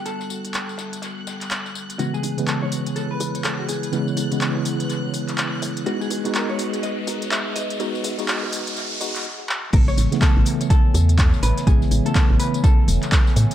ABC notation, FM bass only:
X:1
M:4/4
L:1/16
Q:"Swing 16ths" 1/4=124
K:A
V:1 name="FM bass" clef=bass
z16 | A,,, z A,,, z2 A,,, z4 E,,3 A,,, A,,, z | A,,, z A,,, z2 A,,, z4 E,,, z3 A,, z | E,, z E,, z2 E,, z4 B,,,3 E,, E,, z |
E,, z E,, z2 E,, z4 E,,2 z4 | A,,, z A,,, z2 A,,, z4 E,,3 A,,, A,,, z | A,,, z A,,, z2 A,,, z4 E,,, z3 A,, z |]